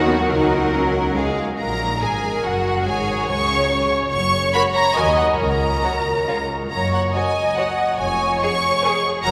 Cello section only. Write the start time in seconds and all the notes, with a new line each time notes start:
0.07 B3
0.29 D#4
0.74 C#4
1.60 A#2
2.03 G#2
2.45 F#2
2.86 G#2
3.30 C#3
4.13 F#2
4.96 D#2
5.39 C#2
6.28 C#2
6.72 F#2
7.99 F2
9.24 F#2